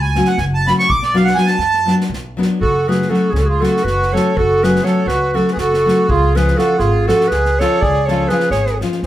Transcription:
Already playing: C#2
0.01 G#5
0.15 F#3 A3 C#4 F#4, snare
0.25 F#5, snare
0.38 F#1 G#5, snare
0.54 A5
0.66 F#3 A3 C#4 F#4 B5, snare
0.79 C#6, snare
0.89 B1 D6, kick
1.03 D5, snare
1.14 F#3 B3 D4 F#4 F5, snare
1.25 F#5, snare
1.35 F#3 B3 D4 F#4 G#5, snare
1.46 A5, snare
1.59 F#2, snare
1.74 snare
1.86 F#3 B3 D4 F#4, snare
2.01 snare
2.10 B1, snare
2.37 F#3 B3 D4 F#4
2.42 snare
2.61 F#1 F#4 A4, kick
2.87 F#3 A3 C#4 F#4 G#4 B4, snare
3.02 snare
3.10 F#3 A3 C#4 F#4 A4
3.14 snare
3.30 C#2 C#4 G#4
3.35 A4, snare
3.40 F#4
3.46 F4 G#4
3.60 F#3 A3 C#4 F#4 A4, snare
3.77 snare
3.83 F#1 F#4 B4, snare
4.02 snare
4.12 F#3 A3 C#4 F#4 A4 C#5
4.16 snare
4.36 F#1 F#4 A4, kick
4.63 F#3 A3 C#4 F#4 G#4 B4, snare
4.76 snare
4.83 F#3 A3 C#4 F#4 A4 C#5, snare
5.05 C#2 F#4 B4, snare
5.33 F#3 A3 C#4 F#4 A4, snare
5.48 snare
5.52 G#4 B4
5.57 F#1 F#4 A4, snare
5.74 snare
5.86 F#3 A3 C#4 F#4, snare
6.09 C#2 F4 G#4, kick
6.35 F3 G#3 C#4 F4 G#4 B4, snare
6.48 snare
6.56 F3 G#3 C#4 F4 F#4 A4, snare
6.78 G#1 F4 G#4, snare
7.07 F3 G#3 C#4 F4 F#4 A4, snare
7.21 snare
7.28 C#2 G#4 B4, snare
7.45 snare
7.59 F3 G#3 C#4 F4 A4 C#5, snare
7.81 C#2 G#4 D5, kick
8.06 F3 G#3 C#4 A4 C#5, snare
8.10 F4
8.28 F3 G#3 C#4 G#4 B4, snare
8.32 F4
8.40 snare
8.50 G#1 G#4 C#5, snare
8.67 snare
8.81 F3 G#3 C#4 F4, snare
8.92 snare
9.03 C#2, snare

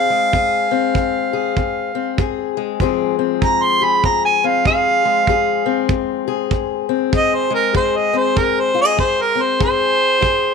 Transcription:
Already playing: F2 C4 G#4 F5
0.10 G#3
0.33 F2 G#4, kick
0.71 C4
0.95 F2, kick
1.33 G#4
1.57 F2, kick
1.95 C4
2.18 F2 G#4, kick
2.57 G#3
2.80 F2 F3 G#3 C4 G#4, kick
3.19 C4
3.42 F2 A#5, kick
3.63 C6
3.82 G#4 B5
4.04 F2 A#5, kick
4.25 G#5
4.44 C4 F5
4.65 F2 G#4 F5, kick
5.05 G#3
5.27 F2 G#4, kick
5.66 C4
5.89 F2, kick
6.28 G#4
6.51 F2, kick
6.89 C4
7.12 F2 G#4 D#5, kick
7.35 C5
7.50 G#3
7.55 A#4
7.75 F2 G#4 C5, kick
7.97 D#5
8.13 C4
8.18 C5
8.36 F2 A#4, kick
8.60 C5
8.74 F4
8.81 G#4 D#5
8.97 F2 C5, kick
9.22 A#4
9.35 C4
9.42 C5
9.60 F2 G#4 C5, kick
10.21 F2 G#4, kick

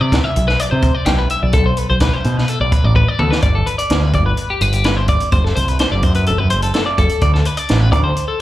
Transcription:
0.01 C3 D5
0.12 kick, snare, closed hi-hat
0.24 E5
0.36 B1, closed hi-hat
0.48 B4, snare
0.59 D5, closed hi-hat
0.71 C3 C5
0.82 kick, closed hi-hat
0.95 D5
1.06 B1 G4, snare, closed hi-hat
1.19 B4
1.30 E5, closed hi-hat
1.43 B1 D5
1.53 B1 A4, kick, closed hi-hat
1.66 C5
1.77 B4, closed hi-hat
1.90 B1 C5
2.00 B4, kick, snare, closed hi-hat
2.13 C5
2.24 B2, closed hi-hat
2.37 B4, snare
2.48 A4, closed hi-hat
2.60 B1 D5
2.72 B4, kick, closed hi-hat
2.84 A1 D5
2.96 B4, kick
3.08 D5
3.19 D2 A4, mid tom
3.31 B4, snare
3.42 G1 D5, kick, closed hi-hat
3.55 A4
3.66 B4, closed hi-hat
3.78 D5, closed hi-hat
3.90 D2, snare, closed hi-hat
4.03 B4
4.13 G1 D5, kick, closed hi-hat
4.26 B4
4.37 closed hi-hat
4.50 G4
4.61 G1 B4, closed hi-hat
4.73 G4, closed hi-hat
4.84 B4, snare, closed hi-hat
4.97 C5
5.08 D5, kick, closed hi-hat
5.20 closed hi-hat
5.32 F#1 C5, kick, closed hi-hat
5.45 A4, snare
5.56 C2 C5, closed hi-hat
5.68 B4, closed hi-hat
5.79 C5, snare, closed hi-hat
5.92 F#1 D5
6.03 F#2 C5, kick, closed hi-hat
6.14 B4, closed hi-hat
6.26 E1 A4, closed hi-hat
6.38 F#2 B4
6.50 F#1 C5, closed hi-hat
6.62 A4, closed hi-hat
6.74 A4, snare, closed hi-hat
6.86 D5
6.98 F#1 A4, kick, closed hi-hat
7.09 closed hi-hat
7.21 D2 D5, kick, closed hi-hat
7.34 A4, snare
7.45 B4, closed hi-hat
7.57 D5, closed hi-hat
7.69 A1, snare, closed hi-hat
7.80 B4
7.92 D2 D5, kick, closed hi-hat
8.04 C5
8.17 closed hi-hat
8.28 A4

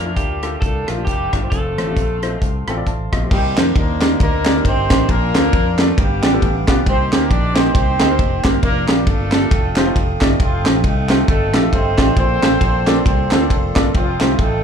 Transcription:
Already playing: F2 A#2 A#3 D4 F4 A#4 F5 A5 D6
0.05 A3 D4 F4 A#4
0.16 D2 G3 D4 G4, kick, closed hi-hat
0.42 A3 D4 F4 A4, cross-stick, closed hi-hat
0.61 C2 A3 D4 F4 A4, kick, closed hi-hat
0.87 A#1 F3 A3 D4 F4 A#4, cross-stick, closed hi-hat
0.98 A3 D4 F4 G4
1.05 F1 D4 G4, kick, closed hi-hat
1.09 G3 G4
1.33 G1 A3 D4 F4 A#4, kick, cross-stick, closed hi-hat
1.43 A3 D4 F4 C5
1.50 F1 A3 C4 F4 A4 C5 C6, kick, closed hi-hat
1.78 A1 A3 C4 F4 C5, cross-stick, closed hi-hat
1.87 A3 C4 F4 G4
1.97 A#1, kick, closed hi-hat
2.22 A3 C4 F4 C5 D#5, cross-stick, closed hi-hat
2.39 C2 G4 F5, kick, closed hi-hat
2.67 A1 A3 C4 F4 A4 G5, cross-stick, closed hi-hat
2.77 A3 C4 F4 D5
2.87 A1 A5, kick, closed hi-hat
3.12 A#1 A3 C4 F4 D#5 C6, kick, cross-stick, closed hi-hat
3.22 A3 C4 F4 G4
3.31 C2 C3 G3 A#3 D#4 G4 A#4 C5 D5 C6, kick, crash
3.57 F2 A#3 D4 D#4 G4 C5, snare, clap, ride bell
3.76 D#2 A#3 D4 D#4 A#4, kick, ride bell
4.01 A#3 D4 D#4 G4 A#4, snare, clap, ride bell
4.20 D2 A#3 D4 D#4 A#4, kick, ride bell
4.45 A#3 D4 D#4 G4 D5, snare, clap, ride bell
4.56 A#3 D4 D#4 G4 A#4
4.65 G1 C4 D#4 G4 C5, kick, ride bell
4.90 A1 A#3 D4 D#4 G4 C5, kick, snare, clap, ride bell
5.09 A#1 A#2 A#3 D4 F4 A#4 D5 A5, kick, ride bell
5.35 D2 A#3 D4 F4 A4 C5, snare, clap, ride bell
5.53 F2, kick, ride bell
5.78 A3 A#3 D4 F4 A4 D5, snare, clap, ride bell
5.98 G1 G2 G3 B3 D4 G4 B4 F5 G5 D6, kick, ride bell
6.23 A1 B3 D4 F4 G4 D5, snare, clap, ride bell
6.33 B3 D4 F4 G4 A4
6.42 A1, kick, ride bell
6.68 B1 B3 D4 F4 G4 D5, kick, snare, clap, ride bell
6.86 C2 C3 A#3 C4 D#4 G4 C5 D#5 C6, kick, ride bell
7.12 D2 A#3 C4 D#4 G4 A#4 C5, snare, clap, ride bell
7.30 A#1 D4 D5, kick, ride bell
7.55 A#3 C4 D#4 G4 C5 D#5, snare, clap, ride bell
7.74 C2 C4 D#4 G4 C5, kick, ride bell
8.00 D2 A#3 C4 D#4 G4 D#5, snare, clap, ride bell
8.10 A#3 C4 D#4 G4 A#4
8.19 F1, kick, ride bell
8.44 G1 A#3 C4 D#4 G4 A#4 C5, kick, snare, clap, ride bell
8.63 F1 A#3 D4 F4 A#4 D5 F5 D6, kick, ride bell
8.88 A#1 G3 D4 F4 G4 A#4, snare, clap, ride bell
9.07 G1 A3 D4 F4 A4, kick, ride bell
9.32 D4 F4 G4, snare, clap, ride bell
9.51 F1 A4 G5 D#6, kick, ride bell
9.76 A3 D#4 F4 G4 C5, snare, clap, ride bell
9.85 A3 D#4 F4 G4 C5
9.96 F1, kick, ride bell
10.20 G1 A3 D#4 F4 G4 D5, kick, snare, clap, ride bell
10.40 F1 F3 A3 C4 F4, kick, ride bell
10.64 A1 A3 D#4 F4 G4 C5, snare, clap, ride bell
10.84 C2 A3 C4 D#4 A4, kick, ride bell
11.09 A3 D#4 F4 G4 C5, snare, clap, ride bell
11.28 G1 A3 C4 D#4 A4, kick, ride bell
11.54 A#1 A3 D#4 F4 G4 A4, snare, clap, ride bell
11.62 A3 D#4 F4 G4 A4
11.73 G1 C4 D#4 A4 C5, kick, ride bell
11.98 A1 A3 D#4 F4 G4 D5, kick, snare, clap, ride bell
12.16 A#1 A#2 A#3 C4 F4 A4 C5 D5 A5 C6, kick, ride bell
12.42 A1 A#3 D4 F4 A4 C5, snare, clap, ride bell
12.61 A#1, kick, ride bell
12.87 A#3 D4 F4 A4 D5, snare, clap, ride bell
13.06 C2 C4 F4 A4 C5, kick, ride bell
13.31 D2 A#3 D4 F4 A4 C5, snare, clap, ride bell
13.41 A#3 D4 F4 A4 C5
13.50 F1, kick, ride bell
13.75 G1 A#3 D4 F4 A4 D5, kick, snare, clap, ride bell
13.94 F1 F3 A3 C4 F4 A4 F5 G5 D#6, kick, ride bell
14.20 C2 A3 D#4 F4 G4 C5, snare, clap, ride bell
14.39 A1 A3 C4 D#4 A4, kick, ride bell

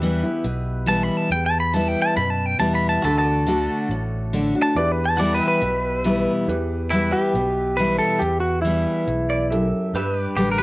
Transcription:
Already playing: E2 E4 G4 B4 E5
0.02 E3 G3 B3 E4
0.23 B3 E4
0.44 B1 B2
0.86 E3 G3 B3 E4 A5
1.03 B5
1.17 A5
1.30 E2 G5
1.46 A5
1.60 B5
1.73 E3 G3 B3 E4 A5
1.88 G5
2.02 A5
2.16 F#2 B2 B5
2.30 A5
2.46 G5
2.59 E2 E3 G3 B3 E4 A5
2.75 B5
2.89 A5
3.02 D2 D3 D4 F#4 A4 B4 E5 A5
3.18 A5
3.29 A4 D5
3.47 D3 A3 D4 F#4
3.89 A1 A2
4.33 D3 A3 D4 F#4
4.55 D4 F#4
4.62 A5
4.75 E2 E4 G4 B4 D5
4.92 B4
5.06 A5
5.17 E3 G3 B3 E4 F#4 A4 D5
5.35 G4 B4
5.43 B4 E5
5.48 B4
5.61 B1 B2
6.04 E3 G3 B3 E4
6.47 E2 E4 G4 B4
6.90 E3 G3 B3 E4 G4 B4 E5
7.13 G4
7.34 B1 B2
7.77 E3 G3 B3 E4 B4
7.98 A4
8.19 E2 G4
8.40 F#4
8.62 E3 G3 B3 E4
8.66 E4
9.07 B1 E2
9.30 D5
9.50 F#2 E4 G4 A4 E5
9.93 G2 D4 G4 B4 E5
10.22 D5
10.36 A1 D3 G3 B3 G4
10.52 A#4
10.58 G4 B4

